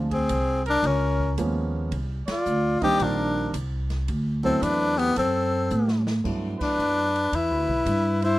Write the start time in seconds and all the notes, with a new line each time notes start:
Already playing: D2
0.11 C4 G#4, kick, ride
0.29 C2, hi-hat pedal, ride
0.66 D4 A#4, ride
0.82 C#2 A#4, ride
0.87 C#4
1.20 kick
1.38 D#2 F3 G#3 A#3 B3 C#4, hi-hat pedal, ride
1.91 C2, ride
2.27 D5, muted upright bass stroke, snare, ride
2.31 F4
2.46 D2, hi-hat pedal
2.81 D#3 G3 A#3 C4 D4 G4 D#5, muted upright bass stroke, kick, ride
3.00 A#1 D4 A#4, ride
3.54 C2, hi-hat pedal, ride
3.90 snare, ride
4.08 D2, ride
4.44 F#3 A3 B3 C4 E4 A4, kick
4.62 E2 D4 B4, hi-hat pedal, ride
4.98 B3 G4, ride
5.16 F#2 C4 A4, ride
5.70 A2, hi-hat pedal
5.88 snare
6.07 snare
6.24 G2 F#3 A3 B3 D4 E4, kick, crash
6.59 D4 B4, muted upright bass stroke, kick, crash
6.79 F#2, hi-hat pedal
7.16 ride
7.32 E2 E4 B4, ride
7.51 D2
7.68 B1
7.85 G2, hi-hat pedal, ride
8.22 E4 C5, ride